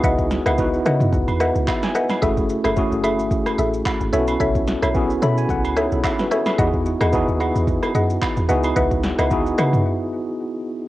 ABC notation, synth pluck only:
X:1
M:4/4
L:1/16
Q:"Swing 16ths" 1/4=110
K:C#m
V:1 name="Synth pluck"
[Bdef] z2 [Bdef]3 [Bdef]2 z2 [Bdef] z3 [Bdef]2 | [GAe] z2 [GAe]3 [GAe]2 z2 [GAe] z3 [Ace]2 | [Ace] z2 [Ace]3 [Ace]2 z2 [Ace] z3 [Ace]2 | [Gdf] z2 [Gdf]3 [Gdf]2 z2 [Gdf] z3 [Bdef]2 |
[Bdef] z2 [Bdef]3 [Bdef]2 z8 |]